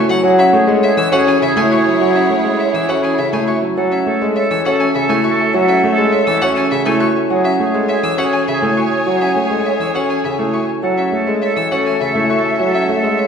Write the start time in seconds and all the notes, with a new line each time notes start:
Already playing: F#4 G#4 A4 C#5 E5 F#5 A5
0.09 F#3 F#5 G#5
0.23 F#3 E4 G#4 C#5 F#5
0.38 C#4 C#5 E5
0.53 A3 G#4
0.67 G#3 A4
0.83 G#4 C#5 E5
0.97 E3 C#5 E6
1.12 C#4 F#4 A4 F#5
1.17 G#4
1.27 C#4 G#5
1.42 C#3 E5
1.48 G#4
1.56 A3 E4 C#5 G#5
1.71 F#4 E5 C#6
1.78 G#4
1.86 F#3 G#5
2.00 F#3 C#5 F#5
2.10 G#4
2.15 C#4 C#5 E5
2.29 A3 G#4
2.40 G#4
2.44 G#3 A4
2.59 C#5 E5
2.70 E3 G#4
2.74 C#5 E6
2.89 C#4 F#4 A4 F#5
3.01 C#4 G#4 G#5
3.18 C#3 E5
3.31 A3 E4 G#4 C#5 G#5
3.47 F#4 E5 C#6
3.63 F#3 G#5
3.77 F#3 A3 A4 C#5 E5 F#5
3.91 C#4 C#5 E5
4.07 A3 G#4 A4
4.21 G#3 A4
4.36 A4 C#5 E5
4.51 E3 C#5 E6
4.65 C#4 F#4 A4 F#5
4.69 A4
4.79 C#4 G#5
4.95 C#3 E5
5.00 A4
5.09 A3 E4 C#5 G#5
5.24 F#4 E5 C#6
5.31 A4
5.39 G#5
5.53 F#3 C#5 F#5
5.61 A4
5.68 C#4 C#5 E5
5.83 A3 G#4
5.93 A4
5.97 G#3 A4
6.12 C#5 E5
6.24 E3 A4 C#5 E6
6.42 C#4 F#4 A4 F#5
6.54 C#4 A4 G#5
6.71 C#3 E5
6.85 A3 E4 A4 C#5 G#5
7.00 F#4 E5 C#6
7.16 G#5
7.30 F#3 G#4 C#5 F#5 G#5
7.44 C#4 C#5 E5
7.59 A3 G#4
7.74 G#3 A4
7.89 G#4 C#5 E5
8.03 E3 C#5 E6
8.18 C#4 F#4 A4 F#5
8.22 G#4
8.33 C#4 G#5
8.47 C#3 E5
8.53 G#4
8.62 A3 E4 C#5
8.77 F#4 E5 C#6
8.85 G#4
8.91 G#5
9.06 F#3 C#5 F#5
9.15 G#4
9.21 C#4 C#5 E5
9.36 A3 G#4
9.45 G#4
9.50 G#3 A4
9.65 C#5 E5
9.76 E3 G#4
9.80 C#5 E6
9.94 C#4 F#4 A4 F#5
10.07 C#4 G#4 G#5
10.24 C#3 E5
10.38 A3 E4 G#4 C#5
10.53 F#4 E5 C#6
10.68 G#5
10.82 F#3 A3 A4 C#5 E5 F#5
10.97 C#4 C#5 E5
11.12 A3 G#4 A4
11.27 G#3 A4
11.41 A4 C#5 E5
11.56 E3 C#5 E6
11.70 C#4 F#4 A4 F#5
11.75 A4
11.85 G#5
12.00 C#3 E5
12.06 A4
12.15 A3 E4 C#5
12.30 F#4 E5 C#6
12.37 A4
12.44 G#5
12.59 F#3 C#5 F#5
12.67 A4
12.74 C#4 C#5 E5
12.89 A3 G#4
12.98 A4
13.03 G#3 A4
13.18 C#5 E5